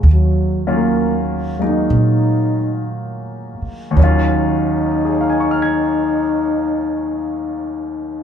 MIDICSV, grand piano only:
0, 0, Header, 1, 2, 480
1, 0, Start_track
1, 0, Key_signature, -6, "minor"
1, 0, Tempo, 931677
1, 25, Time_signature, 4, 2, 24, 8
1, 986, Tempo, 1001669
1, 1466, Tempo, 1071429
1, 3847, End_track
2, 0, Start_track
2, 0, Title_t, "Grand piano"
2, 0, Program_c, 0, 0
2, 0, Control_c, 0, 64, 127
2, 0, Note_on_c, 0, 54, 38
2, 0, Note_on_c, 0, 56, 33
2, 0, Note_on_c, 0, 58, 32
2, 0, Note_on_c, 0, 63, 43
2, 345, Note_off_c, 0, 58, 0
2, 345, Note_on_c, 0, 51, 49
2, 345, Note_on_c, 0, 58, 44
2, 347, Note_off_c, 0, 54, 0
2, 347, Note_on_c, 0, 54, 46
2, 350, Note_on_c, 0, 61, 45
2, 353, Note_on_c, 0, 65, 53
2, 813, Note_off_c, 0, 54, 0
2, 819, Note_off_c, 0, 58, 0
2, 821, Note_off_c, 0, 56, 0
2, 821, Note_on_c, 0, 54, 38
2, 821, Note_on_c, 0, 56, 32
2, 827, Note_on_c, 0, 58, 34
2, 833, Note_off_c, 0, 63, 0
2, 833, Note_on_c, 0, 63, 40
2, 1911, Note_on_c, 0, 39, 53
2, 1918, Note_off_c, 0, 51, 0
2, 1925, Note_on_c, 0, 51, 48
2, 1931, Note_off_c, 0, 54, 0
2, 1938, Note_off_c, 0, 56, 0
2, 1938, Note_on_c, 0, 54, 48
2, 1941, Note_off_c, 0, 58, 0
2, 1943, Note_off_c, 0, 61, 0
2, 1944, Note_off_c, 0, 63, 0
2, 1944, Note_off_c, 0, 65, 0
2, 1945, Control_c, 0, 64, 0
2, 1950, Note_on_c, 0, 61, 51
2, 1968, Note_on_c, 0, 65, 60
2, 2026, Control_c, 0, 64, 127
2, 2421, Note_on_c, 0, 68, 41
2, 2456, Note_on_c, 0, 73, 36
2, 2493, Note_on_c, 0, 77, 36
2, 2533, Note_on_c, 0, 80, 36
2, 2579, Note_on_c, 0, 85, 34
2, 2629, Note_on_c, 0, 89, 31
2, 2679, Note_on_c, 0, 92, 30
2, 3847, Note_off_c, 0, 39, 0
2, 3847, Note_off_c, 0, 51, 0
2, 3847, Note_off_c, 0, 54, 0
2, 3847, Note_off_c, 0, 61, 0
2, 3847, Note_off_c, 0, 65, 0
2, 3847, Note_off_c, 0, 68, 0
2, 3847, Note_off_c, 0, 73, 0
2, 3847, Note_off_c, 0, 77, 0
2, 3847, Note_off_c, 0, 80, 0
2, 3847, Note_off_c, 0, 85, 0
2, 3847, Note_off_c, 0, 89, 0
2, 3847, Note_off_c, 0, 92, 0
2, 3847, End_track
0, 0, End_of_file